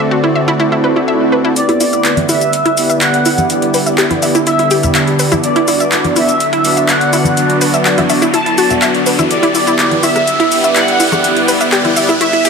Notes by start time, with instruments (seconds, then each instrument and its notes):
Already playing: ambient pad D3 A3 C4 F#4 B4, supersaw synth C4 F#4 A4 D5
0.11 synth arpeggio sound F#4
0.24 synth arpeggio sound E4
0.35 synth arpeggio sound E5
0.48 synth arpeggio sound E4
0.60 synth arpeggio sound E4, swell
0.72 synth arpeggio sound E4
0.84 synth arpeggio sound B4
0.96 synth arpeggio sound E4
1.08 synth arpeggio sound E5
1.32 synth arpeggio sound B4
1.45 synth arpeggio sound E4
1.56 ambient pad D3 G3 B3 E4 B4, supersaw synth B3 E4 G4 D5, analog synth lead D5, closed hi-hat, riser, shaker
1.69 synth arpeggio sound E4, closed hi-hat
1.81 synth arpeggio sound E4, open hi-hat, shaker
1.93 synth arpeggio sound E5, closed hi-hat, shaker
2.05 clap, closed hi-hat, shaker
2.17 closed hi-hat, high conga
2.29 supersaw synth B3 E4 G4 D5, synth arpeggio sound E4, analog synth lead E5, open hi-hat, shaker
2.41 closed hi-hat, shaker
2.53 closed hi-hat, shaker
2.65 synth arpeggio sound E4, closed hi-hat
2.77 supersaw synth B3 E4 G4 D5, open hi-hat, shaker
2.90 synth arpeggio sound E5, closed hi-hat, shaker
3.01 analog synth lead F#5, clap, closed hi-hat, shaker
3.14 closed hi-hat
3.26 synth arpeggio sound E4, open hi-hat, shaker
3.38 closed hi-hat, high conga, shaker
3.50 supersaw synth B3 E4 G4 D5, ambient pad A4, closed hi-hat, shaker
3.62 closed hi-hat
3.74 synth arpeggio sound B4, open hi-hat, shaker
3.86 synth arpeggio sound E5, closed hi-hat, shaker
3.98 synth arpeggio sound G4, clap, closed hi-hat, shaker
4.11 synth arpeggio sound E4, closed hi-hat, high conga
4.22 supersaw synth B3 E4 G4 D5, synth arpeggio sound E5, open hi-hat, shaker
4.35 synth arpeggio sound E4, closed hi-hat, shaker
4.47 synth arpeggio sound E4, analog synth lead E5, closed hi-hat, shaker
4.59 synth arpeggio sound E4, closed hi-hat
4.71 supersaw synth B3 E4 G4 D5, synth arpeggio sound G4, open hi-hat, shaker
4.83 synth arpeggio sound E5, closed hi-hat, low conga, shaker
4.95 synth arpeggio sound E5, clap, closed hi-hat, shaker
5.07 closed hi-hat
5.19 synth arpeggio sound B4, open hi-hat, shaker
5.32 synth arpeggio sound E4, closed hi-hat, high conga, shaker
5.43 ambient pad F#3 B3 F#4 B4, supersaw synth B3 D4 F#4 D5, analog synth lead D5, closed hi-hat, shaker
5.56 synth arpeggio sound E4, closed hi-hat
5.68 synth arpeggio sound E4, open hi-hat, shaker
5.80 synth arpeggio sound E5, closed hi-hat, shaker
5.92 clap, closed hi-hat, shaker
6.04 closed hi-hat, high conga
6.16 supersaw synth B3 D4 F#4 D5, synth arpeggio sound E4, analog synth lead E5, open hi-hat, shaker
6.29 closed hi-hat, shaker
6.40 closed hi-hat, shaker
6.53 synth arpeggio sound E4, closed hi-hat
6.64 supersaw synth B3 D4 F#4 D5, open hi-hat, shaker
6.77 synth arpeggio sound E5, closed hi-hat, shaker
6.89 analog synth lead F#5, clap, closed hi-hat, shaker
7.01 closed hi-hat
7.13 synth arpeggio sound E4, open hi-hat, shaker
7.24 closed hi-hat, high conga, shaker
7.37 supersaw synth B3 D4 F#4 D5, ambient pad A4, closed hi-hat, shaker
7.50 closed hi-hat
7.61 synth arpeggio sound B4, open hi-hat, shaker
7.74 synth arpeggio sound E5, closed hi-hat, shaker
7.85 synth arpeggio sound F#4, clap, closed hi-hat, shaker
7.98 synth arpeggio sound E4, closed hi-hat, high conga
8.09 supersaw synth B3 D4 F#4 D5, synth arpeggio sound E5, open hi-hat, shaker
8.22 synth arpeggio sound E4, closed hi-hat, shaker
8.34 synth arpeggio sound E4, analog synth lead A5, closed hi-hat, shaker
8.46 synth arpeggio sound E4, closed hi-hat
8.58 supersaw synth B3 D4 F#4 D5, synth arpeggio sound F#4, open hi-hat, shaker
8.70 synth arpeggio sound E5, closed hi-hat, low conga, shaker
8.82 synth arpeggio sound E5, clap, closed hi-hat, shaker
8.95 closed hi-hat
9.06 synth arpeggio sound B4, open hi-hat, shaker
9.19 synth arpeggio sound E4, high conga, shaker
9.30 ambient pad G3 E4 B4, supersaw synth B3 E4 G4 D5, analog synth lead D5, closed hi-hat, shaker
9.43 synth arpeggio sound E4, closed hi-hat
9.55 synth arpeggio sound E4, open hi-hat, high woodblock, shaker
9.67 synth arpeggio sound E4, closed hi-hat, shaker
9.79 clap, closed hi-hat, shaker
9.91 closed hi-hat, high conga
10.03 supersaw synth B3 E4 G4 D5, synth arpeggio sound E4, analog synth lead E5, open hi-hat, high woodblock, shaker
10.16 cross-stick, closed hi-hat, shaker
10.27 closed hi-hat, shaker
10.40 synth arpeggio sound E4, closed hi-hat
10.51 supersaw synth B3 E4 G4 D5, open hi-hat, shaker
10.64 synth arpeggio sound E5, closed hi-hat, high woodblock, shaker
10.76 analog synth lead F#5, clap, closed hi-hat, shaker
10.88 closed hi-hat
11.00 synth arpeggio sound E4, open hi-hat, shaker
11.12 cross-stick, closed hi-hat, high conga, high woodblock, shaker
11.24 supersaw synth B3 E4 G4 D5, closed hi-hat, shaker
11.37 closed hi-hat
11.48 synth arpeggio sound B4, open hi-hat, shaker
11.61 synth arpeggio sound E5, closed hi-hat, shaker
11.72 synth arpeggio sound G4, clap, closed hi-hat, high woodblock, shaker
11.84 synth arpeggio sound E4, closed hi-hat, high conga
11.96 supersaw synth B3 E4 G4 D5, synth arpeggio sound E5, open hi-hat, shaker
12.09 synth arpeggio sound E4, cross-stick, shaker
12.21 synth arpeggio sound E4, analog synth lead E5, closed hi-hat, high woodblock, shaker
12.33 synth arpeggio sound E4, closed hi-hat
12.45 supersaw synth B3 E4 G4 D5, synth arpeggio sound G4, open hi-hat, shaker